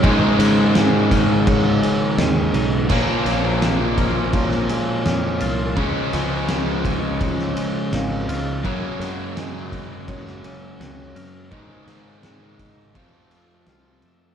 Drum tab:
CC |----------------|x---------------|----------------|----------------|
RD |x-x-x-x-x-x-x-x-|--x-x-x-x-x-x-x-|x-x-x-x-x-x-x-x-|x-x-x-x-x-x-x-x-|
SD |----o-------o---|--o-o----o--o---|--o-o----o--o---|--o-o----o--o---|
BD |o-----o-o-------|o-----o-o-------|o-----o-o-------|o-----o-o-------|

CC |----------------|
RD |x-x-x-x-x-x-x-x-|
SD |--o-o-------o---|
BD |o-----o-o-------|